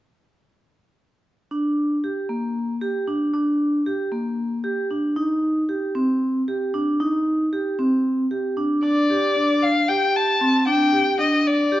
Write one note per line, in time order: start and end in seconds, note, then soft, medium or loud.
1.51 1.96 D4 medium
2.04 2.26 G4 soft
2.29 2.74 A#3 soft
2.81 3.04 G4 medium
3.08 3.30 D4 soft
3.34 3.79 D4 medium
3.86 4.09 G4 soft
4.12 4.57 A#3 soft
4.64 4.86 G4 medium
4.91 5.13 D4 soft
5.16 5.61 D#4 medium
5.69 5.91 G4 soft
5.95 6.40 C4 medium
6.48 6.70 G4 medium
6.74 6.96 D4 medium
7.00 7.45 D#4 medium
7.53 7.75 G4 soft
7.79 8.23 C4 medium
8.31 8.53 G4 soft
8.57 8.79 D4 medium
8.83 9.05 D4 medium
8.83 9.64 D5 medium
9.10 9.32 G4 medium
9.36 9.80 D4 soft
9.62 9.90 F5 medium
9.88 10.33 G4 medium
9.88 10.17 G5 medium
10.16 10.67 A5 medium
10.41 10.63 C4 medium
10.67 10.89 D4 medium
10.67 11.15 G5 medium
10.92 11.15 G4 medium
11.19 11.63 D4 medium
11.19 11.48 D#5 medium
11.47 11.80 D5 medium
11.72 11.80 G4 medium